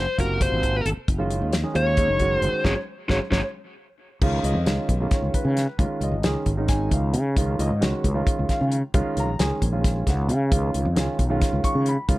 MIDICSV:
0, 0, Header, 1, 6, 480
1, 0, Start_track
1, 0, Tempo, 449102
1, 1156, Time_signature, 7, 3, 24, 8
1, 13023, End_track
2, 0, Start_track
2, 0, Title_t, "Lead electric guitar"
2, 0, Program_c, 0, 29
2, 0, Note_on_c, 0, 72, 90
2, 166, Note_off_c, 0, 72, 0
2, 215, Note_on_c, 0, 70, 76
2, 430, Note_off_c, 0, 70, 0
2, 449, Note_on_c, 0, 72, 70
2, 945, Note_off_c, 0, 72, 0
2, 1881, Note_on_c, 0, 73, 94
2, 2544, Note_off_c, 0, 73, 0
2, 2544, Note_on_c, 0, 72, 94
2, 2824, Note_off_c, 0, 72, 0
2, 2829, Note_on_c, 0, 66, 79
2, 2836, Note_on_c, 0, 68, 81
2, 2840, Note_on_c, 0, 73, 74
2, 2907, Note_off_c, 0, 66, 0
2, 2912, Note_off_c, 0, 68, 0
2, 2912, Note_off_c, 0, 73, 0
2, 3307, Note_on_c, 0, 66, 86
2, 3314, Note_on_c, 0, 73, 83
2, 3317, Note_on_c, 0, 68, 78
2, 3387, Note_off_c, 0, 66, 0
2, 3390, Note_off_c, 0, 68, 0
2, 3390, Note_off_c, 0, 73, 0
2, 3547, Note_on_c, 0, 66, 88
2, 3551, Note_on_c, 0, 73, 88
2, 3553, Note_on_c, 0, 68, 84
2, 3625, Note_off_c, 0, 73, 0
2, 3627, Note_off_c, 0, 66, 0
2, 3629, Note_off_c, 0, 68, 0
2, 13023, End_track
3, 0, Start_track
3, 0, Title_t, "Grand piano"
3, 0, Program_c, 1, 0
3, 189, Note_on_c, 1, 65, 60
3, 191, Note_on_c, 1, 48, 66
3, 194, Note_on_c, 1, 58, 60
3, 197, Note_on_c, 1, 66, 70
3, 906, Note_off_c, 1, 65, 0
3, 907, Note_off_c, 1, 48, 0
3, 908, Note_off_c, 1, 58, 0
3, 910, Note_off_c, 1, 66, 0
3, 1263, Note_on_c, 1, 56, 74
3, 1266, Note_on_c, 1, 51, 76
3, 1270, Note_on_c, 1, 61, 69
3, 1272, Note_on_c, 1, 65, 89
3, 1626, Note_off_c, 1, 56, 0
3, 1627, Note_off_c, 1, 51, 0
3, 1629, Note_off_c, 1, 61, 0
3, 1630, Note_off_c, 1, 65, 0
3, 1744, Note_on_c, 1, 56, 62
3, 1747, Note_on_c, 1, 51, 68
3, 1748, Note_on_c, 1, 61, 66
3, 1750, Note_on_c, 1, 68, 75
3, 1839, Note_off_c, 1, 56, 0
3, 1840, Note_off_c, 1, 51, 0
3, 1841, Note_off_c, 1, 61, 0
3, 1841, Note_off_c, 1, 68, 0
3, 1857, Note_on_c, 1, 51, 70
3, 1862, Note_on_c, 1, 61, 64
3, 1865, Note_on_c, 1, 56, 68
3, 1866, Note_on_c, 1, 65, 82
3, 2044, Note_off_c, 1, 51, 0
3, 2046, Note_off_c, 1, 61, 0
3, 2048, Note_off_c, 1, 56, 0
3, 2048, Note_off_c, 1, 65, 0
3, 2116, Note_on_c, 1, 51, 63
3, 2117, Note_on_c, 1, 56, 58
3, 2118, Note_on_c, 1, 61, 58
3, 2123, Note_on_c, 1, 63, 70
3, 2293, Note_off_c, 1, 51, 0
3, 2294, Note_off_c, 1, 56, 0
3, 2294, Note_off_c, 1, 61, 0
3, 2297, Note_off_c, 1, 63, 0
3, 2343, Note_on_c, 1, 51, 73
3, 2345, Note_on_c, 1, 56, 70
3, 2349, Note_on_c, 1, 61, 62
3, 2353, Note_on_c, 1, 66, 77
3, 2808, Note_off_c, 1, 61, 0
3, 2814, Note_off_c, 1, 56, 0
3, 2824, Note_on_c, 1, 61, 88
3, 2828, Note_off_c, 1, 51, 0
3, 2830, Note_on_c, 1, 54, 80
3, 2830, Note_on_c, 1, 56, 85
3, 2833, Note_off_c, 1, 66, 0
3, 2904, Note_off_c, 1, 61, 0
3, 2908, Note_off_c, 1, 54, 0
3, 2908, Note_off_c, 1, 56, 0
3, 3312, Note_on_c, 1, 61, 81
3, 3313, Note_on_c, 1, 54, 86
3, 3315, Note_on_c, 1, 56, 83
3, 3389, Note_off_c, 1, 61, 0
3, 3390, Note_off_c, 1, 54, 0
3, 3390, Note_off_c, 1, 56, 0
3, 3543, Note_on_c, 1, 54, 79
3, 3546, Note_on_c, 1, 61, 77
3, 3549, Note_on_c, 1, 56, 79
3, 3623, Note_off_c, 1, 54, 0
3, 3625, Note_off_c, 1, 61, 0
3, 3627, Note_off_c, 1, 56, 0
3, 4512, Note_on_c, 1, 51, 79
3, 4514, Note_on_c, 1, 56, 68
3, 4519, Note_on_c, 1, 61, 72
3, 4522, Note_on_c, 1, 65, 84
3, 4533, Note_on_c, 1, 77, 69
3, 4752, Note_on_c, 1, 75, 82
3, 4755, Note_off_c, 1, 77, 0
3, 4868, Note_off_c, 1, 51, 0
3, 4869, Note_off_c, 1, 56, 0
3, 4871, Note_off_c, 1, 61, 0
3, 4873, Note_off_c, 1, 65, 0
3, 4977, Note_on_c, 1, 51, 65
3, 4982, Note_on_c, 1, 56, 64
3, 4986, Note_on_c, 1, 61, 66
3, 4988, Note_on_c, 1, 65, 75
3, 5251, Note_off_c, 1, 51, 0
3, 5254, Note_off_c, 1, 56, 0
3, 5256, Note_off_c, 1, 61, 0
3, 5256, Note_off_c, 1, 65, 0
3, 5350, Note_on_c, 1, 51, 71
3, 5354, Note_on_c, 1, 56, 61
3, 5355, Note_on_c, 1, 61, 62
3, 5358, Note_on_c, 1, 65, 74
3, 5428, Note_off_c, 1, 75, 0
3, 5490, Note_on_c, 1, 73, 72
3, 5710, Note_on_c, 1, 71, 72
3, 5713, Note_off_c, 1, 73, 0
3, 5974, Note_off_c, 1, 51, 0
3, 5977, Note_off_c, 1, 56, 0
3, 5977, Note_off_c, 1, 61, 0
3, 5979, Note_off_c, 1, 65, 0
3, 6183, Note_on_c, 1, 51, 76
3, 6189, Note_on_c, 1, 56, 70
3, 6189, Note_on_c, 1, 61, 74
3, 6191, Note_on_c, 1, 65, 82
3, 6388, Note_off_c, 1, 71, 0
3, 6450, Note_on_c, 1, 75, 75
3, 6544, Note_off_c, 1, 51, 0
3, 6547, Note_off_c, 1, 56, 0
3, 6547, Note_off_c, 1, 61, 0
3, 6548, Note_off_c, 1, 65, 0
3, 6670, Note_on_c, 1, 51, 76
3, 6673, Note_on_c, 1, 68, 79
3, 6674, Note_off_c, 1, 75, 0
3, 6674, Note_on_c, 1, 56, 63
3, 6674, Note_on_c, 1, 61, 65
3, 6938, Note_off_c, 1, 51, 0
3, 6940, Note_off_c, 1, 56, 0
3, 6940, Note_off_c, 1, 61, 0
3, 6940, Note_off_c, 1, 68, 0
3, 7024, Note_on_c, 1, 51, 72
3, 7026, Note_on_c, 1, 56, 65
3, 7033, Note_on_c, 1, 63, 76
3, 7034, Note_on_c, 1, 61, 68
3, 7151, Note_on_c, 1, 80, 92
3, 7367, Note_on_c, 1, 76, 50
3, 7384, Note_off_c, 1, 80, 0
3, 7395, Note_off_c, 1, 76, 0
3, 7414, Note_on_c, 1, 77, 69
3, 7653, Note_off_c, 1, 51, 0
3, 7654, Note_off_c, 1, 56, 0
3, 7658, Note_off_c, 1, 61, 0
3, 7658, Note_off_c, 1, 63, 0
3, 7882, Note_on_c, 1, 56, 71
3, 7884, Note_on_c, 1, 51, 82
3, 7884, Note_on_c, 1, 65, 83
3, 7885, Note_on_c, 1, 61, 68
3, 8081, Note_off_c, 1, 77, 0
3, 8126, Note_on_c, 1, 75, 77
3, 8235, Note_off_c, 1, 56, 0
3, 8236, Note_off_c, 1, 51, 0
3, 8236, Note_off_c, 1, 61, 0
3, 8236, Note_off_c, 1, 65, 0
3, 8348, Note_on_c, 1, 51, 78
3, 8349, Note_on_c, 1, 56, 69
3, 8351, Note_on_c, 1, 61, 70
3, 8353, Note_off_c, 1, 75, 0
3, 8356, Note_on_c, 1, 66, 81
3, 8379, Note_on_c, 1, 73, 62
3, 8619, Note_off_c, 1, 51, 0
3, 8620, Note_off_c, 1, 56, 0
3, 8621, Note_off_c, 1, 61, 0
3, 8623, Note_off_c, 1, 66, 0
3, 8704, Note_on_c, 1, 51, 75
3, 8705, Note_on_c, 1, 56, 66
3, 8712, Note_on_c, 1, 61, 67
3, 8713, Note_on_c, 1, 65, 85
3, 9045, Note_off_c, 1, 73, 0
3, 9086, Note_on_c, 1, 77, 81
3, 9314, Note_off_c, 1, 77, 0
3, 9335, Note_off_c, 1, 51, 0
3, 9335, Note_off_c, 1, 56, 0
3, 9339, Note_off_c, 1, 61, 0
3, 9339, Note_off_c, 1, 65, 0
3, 9556, Note_on_c, 1, 56, 88
3, 9558, Note_on_c, 1, 51, 92
3, 9559, Note_on_c, 1, 61, 86
3, 9560, Note_on_c, 1, 65, 96
3, 9832, Note_on_c, 1, 82, 92
3, 9914, Note_off_c, 1, 56, 0
3, 9915, Note_off_c, 1, 51, 0
3, 9916, Note_off_c, 1, 61, 0
3, 9916, Note_off_c, 1, 65, 0
3, 10036, Note_on_c, 1, 51, 71
3, 10036, Note_on_c, 1, 56, 66
3, 10040, Note_on_c, 1, 61, 69
3, 10041, Note_on_c, 1, 80, 79
3, 10043, Note_on_c, 1, 68, 81
3, 10048, Note_off_c, 1, 82, 0
3, 10305, Note_off_c, 1, 51, 0
3, 10305, Note_off_c, 1, 56, 0
3, 10307, Note_off_c, 1, 61, 0
3, 10309, Note_off_c, 1, 68, 0
3, 10391, Note_on_c, 1, 61, 64
3, 10394, Note_on_c, 1, 51, 69
3, 10394, Note_on_c, 1, 56, 62
3, 10396, Note_on_c, 1, 65, 79
3, 10718, Note_off_c, 1, 80, 0
3, 10784, Note_on_c, 1, 78, 70
3, 11006, Note_off_c, 1, 78, 0
3, 11008, Note_on_c, 1, 77, 70
3, 11021, Note_off_c, 1, 61, 0
3, 11022, Note_off_c, 1, 51, 0
3, 11022, Note_off_c, 1, 56, 0
3, 11023, Note_off_c, 1, 65, 0
3, 11236, Note_on_c, 1, 51, 73
3, 11239, Note_on_c, 1, 56, 70
3, 11247, Note_on_c, 1, 61, 70
3, 11247, Note_on_c, 1, 65, 86
3, 11596, Note_off_c, 1, 51, 0
3, 11597, Note_off_c, 1, 56, 0
3, 11601, Note_off_c, 1, 61, 0
3, 11601, Note_off_c, 1, 65, 0
3, 11683, Note_off_c, 1, 77, 0
3, 11709, Note_on_c, 1, 51, 72
3, 11713, Note_on_c, 1, 56, 66
3, 11716, Note_on_c, 1, 61, 68
3, 11722, Note_on_c, 1, 65, 79
3, 11755, Note_on_c, 1, 80, 69
3, 11972, Note_off_c, 1, 80, 0
3, 11983, Note_off_c, 1, 51, 0
3, 11985, Note_off_c, 1, 56, 0
3, 11987, Note_off_c, 1, 61, 0
3, 11990, Note_off_c, 1, 65, 0
3, 12073, Note_on_c, 1, 51, 88
3, 12074, Note_on_c, 1, 56, 77
3, 12077, Note_on_c, 1, 61, 78
3, 12084, Note_on_c, 1, 65, 94
3, 12445, Note_on_c, 1, 85, 104
3, 12676, Note_off_c, 1, 85, 0
3, 12702, Note_off_c, 1, 51, 0
3, 12703, Note_off_c, 1, 56, 0
3, 12703, Note_on_c, 1, 83, 81
3, 12705, Note_off_c, 1, 61, 0
3, 12708, Note_off_c, 1, 65, 0
3, 12915, Note_on_c, 1, 51, 78
3, 12917, Note_on_c, 1, 56, 70
3, 12917, Note_on_c, 1, 61, 74
3, 12922, Note_on_c, 1, 65, 92
3, 13023, Note_off_c, 1, 51, 0
3, 13023, Note_off_c, 1, 56, 0
3, 13023, Note_off_c, 1, 61, 0
3, 13023, Note_off_c, 1, 65, 0
3, 13023, Note_off_c, 1, 83, 0
3, 13023, End_track
4, 0, Start_track
4, 0, Title_t, "Fretless electric bass"
4, 0, Program_c, 2, 35
4, 195, Note_on_c, 2, 30, 84
4, 532, Note_off_c, 2, 30, 0
4, 554, Note_on_c, 2, 32, 79
4, 891, Note_off_c, 2, 32, 0
4, 914, Note_on_c, 2, 32, 79
4, 1027, Note_off_c, 2, 32, 0
4, 1155, Note_on_c, 2, 30, 82
4, 1491, Note_off_c, 2, 30, 0
4, 1514, Note_on_c, 2, 39, 71
4, 1738, Note_off_c, 2, 39, 0
4, 1872, Note_on_c, 2, 39, 79
4, 2208, Note_off_c, 2, 39, 0
4, 2227, Note_on_c, 2, 30, 77
4, 2565, Note_off_c, 2, 30, 0
4, 2583, Note_on_c, 2, 30, 78
4, 2697, Note_off_c, 2, 30, 0
4, 2829, Note_on_c, 2, 32, 86
4, 2920, Note_off_c, 2, 32, 0
4, 3307, Note_on_c, 2, 32, 85
4, 3399, Note_off_c, 2, 32, 0
4, 3547, Note_on_c, 2, 32, 86
4, 3638, Note_off_c, 2, 32, 0
4, 4507, Note_on_c, 2, 37, 91
4, 4732, Note_off_c, 2, 37, 0
4, 4739, Note_on_c, 2, 37, 84
4, 4850, Note_off_c, 2, 37, 0
4, 4857, Note_on_c, 2, 41, 83
4, 4975, Note_off_c, 2, 41, 0
4, 4984, Note_on_c, 2, 37, 82
4, 5099, Note_off_c, 2, 37, 0
4, 5225, Note_on_c, 2, 35, 93
4, 5451, Note_off_c, 2, 35, 0
4, 5583, Note_on_c, 2, 37, 77
4, 5698, Note_off_c, 2, 37, 0
4, 5821, Note_on_c, 2, 49, 80
4, 6049, Note_off_c, 2, 49, 0
4, 6186, Note_on_c, 2, 37, 94
4, 6294, Note_off_c, 2, 37, 0
4, 6421, Note_on_c, 2, 37, 84
4, 6536, Note_on_c, 2, 32, 85
4, 6552, Note_off_c, 2, 37, 0
4, 6655, Note_off_c, 2, 32, 0
4, 6662, Note_on_c, 2, 37, 86
4, 6778, Note_off_c, 2, 37, 0
4, 6906, Note_on_c, 2, 32, 84
4, 7357, Note_off_c, 2, 32, 0
4, 7387, Note_on_c, 2, 37, 84
4, 7629, Note_on_c, 2, 49, 97
4, 7645, Note_off_c, 2, 37, 0
4, 7855, Note_off_c, 2, 49, 0
4, 7871, Note_on_c, 2, 37, 94
4, 8096, Note_off_c, 2, 37, 0
4, 8111, Note_on_c, 2, 37, 85
4, 8224, Note_off_c, 2, 37, 0
4, 8235, Note_on_c, 2, 44, 88
4, 8346, Note_off_c, 2, 44, 0
4, 8360, Note_on_c, 2, 37, 94
4, 8469, Note_off_c, 2, 37, 0
4, 8594, Note_on_c, 2, 37, 100
4, 8819, Note_off_c, 2, 37, 0
4, 8967, Note_on_c, 2, 37, 81
4, 9069, Note_off_c, 2, 37, 0
4, 9202, Note_on_c, 2, 49, 78
4, 9423, Note_off_c, 2, 49, 0
4, 9557, Note_on_c, 2, 37, 86
4, 9669, Note_off_c, 2, 37, 0
4, 9799, Note_on_c, 2, 37, 81
4, 9916, Note_off_c, 2, 37, 0
4, 9916, Note_on_c, 2, 34, 93
4, 10029, Note_off_c, 2, 34, 0
4, 10044, Note_on_c, 2, 37, 83
4, 10153, Note_off_c, 2, 37, 0
4, 10280, Note_on_c, 2, 34, 82
4, 10728, Note_off_c, 2, 34, 0
4, 10761, Note_on_c, 2, 37, 84
4, 10994, Note_on_c, 2, 49, 94
4, 11010, Note_off_c, 2, 37, 0
4, 11221, Note_off_c, 2, 49, 0
4, 11239, Note_on_c, 2, 37, 92
4, 11464, Note_off_c, 2, 37, 0
4, 11483, Note_on_c, 2, 37, 78
4, 11594, Note_off_c, 2, 37, 0
4, 11600, Note_on_c, 2, 41, 89
4, 11713, Note_off_c, 2, 41, 0
4, 11717, Note_on_c, 2, 37, 92
4, 11831, Note_off_c, 2, 37, 0
4, 11958, Note_on_c, 2, 35, 94
4, 12184, Note_off_c, 2, 35, 0
4, 12321, Note_on_c, 2, 37, 84
4, 12433, Note_off_c, 2, 37, 0
4, 12560, Note_on_c, 2, 49, 78
4, 12785, Note_off_c, 2, 49, 0
4, 12917, Note_on_c, 2, 37, 93
4, 13023, Note_off_c, 2, 37, 0
4, 13023, End_track
5, 0, Start_track
5, 0, Title_t, "Muted fretless electric bass strokes"
5, 9679, Note_on_c, 9, 29, 36
5, 9786, Note_off_c, 9, 29, 0
5, 12198, Note_on_c, 9, 29, 32
5, 12305, Note_off_c, 9, 29, 0
5, 12440, Note_on_c, 9, 29, 36
5, 12547, Note_off_c, 9, 29, 0
5, 13023, End_track
6, 0, Start_track
6, 0, Title_t, "Drums"
6, 197, Note_on_c, 9, 36, 63
6, 198, Note_on_c, 9, 42, 55
6, 304, Note_off_c, 9, 36, 0
6, 305, Note_off_c, 9, 42, 0
6, 436, Note_on_c, 9, 36, 97
6, 436, Note_on_c, 9, 42, 79
6, 543, Note_off_c, 9, 36, 0
6, 543, Note_off_c, 9, 42, 0
6, 674, Note_on_c, 9, 42, 55
6, 676, Note_on_c, 9, 36, 70
6, 781, Note_off_c, 9, 42, 0
6, 783, Note_off_c, 9, 36, 0
6, 916, Note_on_c, 9, 42, 59
6, 1023, Note_off_c, 9, 42, 0
6, 1156, Note_on_c, 9, 42, 74
6, 1157, Note_on_c, 9, 36, 102
6, 1263, Note_off_c, 9, 42, 0
6, 1264, Note_off_c, 9, 36, 0
6, 1395, Note_on_c, 9, 42, 55
6, 1502, Note_off_c, 9, 42, 0
6, 1631, Note_on_c, 9, 42, 71
6, 1638, Note_on_c, 9, 38, 93
6, 1738, Note_off_c, 9, 42, 0
6, 1745, Note_off_c, 9, 38, 0
6, 1873, Note_on_c, 9, 42, 53
6, 1979, Note_off_c, 9, 42, 0
6, 2106, Note_on_c, 9, 42, 74
6, 2111, Note_on_c, 9, 36, 95
6, 2212, Note_off_c, 9, 42, 0
6, 2218, Note_off_c, 9, 36, 0
6, 2345, Note_on_c, 9, 42, 53
6, 2351, Note_on_c, 9, 36, 67
6, 2452, Note_off_c, 9, 42, 0
6, 2458, Note_off_c, 9, 36, 0
6, 2589, Note_on_c, 9, 42, 54
6, 2696, Note_off_c, 9, 42, 0
6, 2828, Note_on_c, 9, 36, 84
6, 2832, Note_on_c, 9, 38, 84
6, 2935, Note_off_c, 9, 36, 0
6, 2939, Note_off_c, 9, 38, 0
6, 3308, Note_on_c, 9, 36, 85
6, 3313, Note_on_c, 9, 38, 82
6, 3415, Note_off_c, 9, 36, 0
6, 3420, Note_off_c, 9, 38, 0
6, 3547, Note_on_c, 9, 36, 79
6, 3552, Note_on_c, 9, 38, 82
6, 3654, Note_off_c, 9, 36, 0
6, 3659, Note_off_c, 9, 38, 0
6, 4506, Note_on_c, 9, 36, 106
6, 4506, Note_on_c, 9, 49, 99
6, 4613, Note_off_c, 9, 36, 0
6, 4613, Note_off_c, 9, 49, 0
6, 4747, Note_on_c, 9, 42, 59
6, 4854, Note_off_c, 9, 42, 0
6, 4986, Note_on_c, 9, 42, 77
6, 4993, Note_on_c, 9, 38, 106
6, 5093, Note_off_c, 9, 42, 0
6, 5100, Note_off_c, 9, 38, 0
6, 5225, Note_on_c, 9, 36, 69
6, 5226, Note_on_c, 9, 42, 58
6, 5332, Note_off_c, 9, 36, 0
6, 5333, Note_off_c, 9, 42, 0
6, 5462, Note_on_c, 9, 42, 78
6, 5466, Note_on_c, 9, 36, 109
6, 5469, Note_on_c, 9, 38, 32
6, 5569, Note_off_c, 9, 42, 0
6, 5573, Note_off_c, 9, 36, 0
6, 5576, Note_off_c, 9, 38, 0
6, 5708, Note_on_c, 9, 36, 75
6, 5709, Note_on_c, 9, 42, 56
6, 5815, Note_off_c, 9, 36, 0
6, 5816, Note_off_c, 9, 42, 0
6, 5951, Note_on_c, 9, 42, 58
6, 5959, Note_on_c, 9, 38, 34
6, 6058, Note_off_c, 9, 42, 0
6, 6066, Note_off_c, 9, 38, 0
6, 6187, Note_on_c, 9, 36, 107
6, 6188, Note_on_c, 9, 42, 81
6, 6294, Note_off_c, 9, 36, 0
6, 6295, Note_off_c, 9, 42, 0
6, 6428, Note_on_c, 9, 42, 56
6, 6535, Note_off_c, 9, 42, 0
6, 6663, Note_on_c, 9, 42, 79
6, 6670, Note_on_c, 9, 38, 104
6, 6770, Note_off_c, 9, 42, 0
6, 6777, Note_off_c, 9, 38, 0
6, 6903, Note_on_c, 9, 42, 59
6, 6907, Note_on_c, 9, 36, 68
6, 7010, Note_off_c, 9, 42, 0
6, 7014, Note_off_c, 9, 36, 0
6, 7143, Note_on_c, 9, 42, 82
6, 7147, Note_on_c, 9, 36, 103
6, 7151, Note_on_c, 9, 38, 33
6, 7250, Note_off_c, 9, 42, 0
6, 7254, Note_off_c, 9, 36, 0
6, 7257, Note_off_c, 9, 38, 0
6, 7390, Note_on_c, 9, 36, 70
6, 7390, Note_on_c, 9, 42, 64
6, 7496, Note_off_c, 9, 42, 0
6, 7497, Note_off_c, 9, 36, 0
6, 7627, Note_on_c, 9, 42, 60
6, 7734, Note_off_c, 9, 42, 0
6, 7872, Note_on_c, 9, 36, 106
6, 7872, Note_on_c, 9, 42, 91
6, 7979, Note_off_c, 9, 36, 0
6, 7979, Note_off_c, 9, 42, 0
6, 8117, Note_on_c, 9, 42, 58
6, 8224, Note_off_c, 9, 42, 0
6, 8358, Note_on_c, 9, 42, 80
6, 8365, Note_on_c, 9, 38, 108
6, 8464, Note_off_c, 9, 42, 0
6, 8472, Note_off_c, 9, 38, 0
6, 8595, Note_on_c, 9, 36, 67
6, 8598, Note_on_c, 9, 42, 62
6, 8702, Note_off_c, 9, 36, 0
6, 8705, Note_off_c, 9, 42, 0
6, 8835, Note_on_c, 9, 36, 111
6, 8837, Note_on_c, 9, 42, 78
6, 8942, Note_off_c, 9, 36, 0
6, 8944, Note_off_c, 9, 42, 0
6, 9075, Note_on_c, 9, 36, 73
6, 9075, Note_on_c, 9, 42, 57
6, 9083, Note_on_c, 9, 38, 33
6, 9182, Note_off_c, 9, 36, 0
6, 9182, Note_off_c, 9, 42, 0
6, 9190, Note_off_c, 9, 38, 0
6, 9316, Note_on_c, 9, 42, 57
6, 9422, Note_off_c, 9, 42, 0
6, 9555, Note_on_c, 9, 42, 81
6, 9557, Note_on_c, 9, 36, 110
6, 9662, Note_off_c, 9, 42, 0
6, 9664, Note_off_c, 9, 36, 0
6, 9800, Note_on_c, 9, 42, 58
6, 9906, Note_off_c, 9, 42, 0
6, 10040, Note_on_c, 9, 42, 79
6, 10047, Note_on_c, 9, 38, 101
6, 10147, Note_off_c, 9, 42, 0
6, 10154, Note_off_c, 9, 38, 0
6, 10280, Note_on_c, 9, 36, 66
6, 10281, Note_on_c, 9, 42, 57
6, 10387, Note_off_c, 9, 36, 0
6, 10388, Note_off_c, 9, 42, 0
6, 10521, Note_on_c, 9, 36, 103
6, 10522, Note_on_c, 9, 42, 77
6, 10529, Note_on_c, 9, 38, 35
6, 10628, Note_off_c, 9, 36, 0
6, 10629, Note_off_c, 9, 42, 0
6, 10636, Note_off_c, 9, 38, 0
6, 10761, Note_on_c, 9, 36, 75
6, 10763, Note_on_c, 9, 42, 61
6, 10770, Note_on_c, 9, 38, 32
6, 10868, Note_off_c, 9, 36, 0
6, 10870, Note_off_c, 9, 42, 0
6, 10877, Note_off_c, 9, 38, 0
6, 11001, Note_on_c, 9, 42, 60
6, 11107, Note_off_c, 9, 42, 0
6, 11240, Note_on_c, 9, 42, 88
6, 11241, Note_on_c, 9, 36, 112
6, 11347, Note_off_c, 9, 36, 0
6, 11347, Note_off_c, 9, 42, 0
6, 11482, Note_on_c, 9, 42, 63
6, 11589, Note_off_c, 9, 42, 0
6, 11718, Note_on_c, 9, 42, 89
6, 11726, Note_on_c, 9, 38, 103
6, 11825, Note_off_c, 9, 42, 0
6, 11833, Note_off_c, 9, 38, 0
6, 11959, Note_on_c, 9, 42, 65
6, 11961, Note_on_c, 9, 36, 71
6, 12066, Note_off_c, 9, 42, 0
6, 12068, Note_off_c, 9, 36, 0
6, 12200, Note_on_c, 9, 42, 90
6, 12201, Note_on_c, 9, 36, 107
6, 12208, Note_on_c, 9, 38, 35
6, 12307, Note_off_c, 9, 36, 0
6, 12307, Note_off_c, 9, 42, 0
6, 12315, Note_off_c, 9, 38, 0
6, 12440, Note_on_c, 9, 36, 81
6, 12443, Note_on_c, 9, 42, 65
6, 12547, Note_off_c, 9, 36, 0
6, 12550, Note_off_c, 9, 42, 0
6, 12675, Note_on_c, 9, 42, 62
6, 12782, Note_off_c, 9, 42, 0
6, 12918, Note_on_c, 9, 42, 86
6, 12919, Note_on_c, 9, 36, 116
6, 13023, Note_off_c, 9, 36, 0
6, 13023, Note_off_c, 9, 42, 0
6, 13023, End_track
0, 0, End_of_file